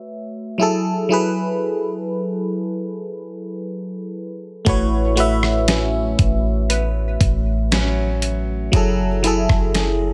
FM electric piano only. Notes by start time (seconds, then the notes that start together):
0.58 F#3 E4 G#4
0.62 A4
1.09 F#3 E4 G#4
1.13 B4
4.65 A3 F#4 B4
4.69 C#5
5.16 A3 F#4 B4
5.20 E5
8.72 F#3 E4 G#4
8.76 A4
9.23 F#3 E4 G#4
9.27 A4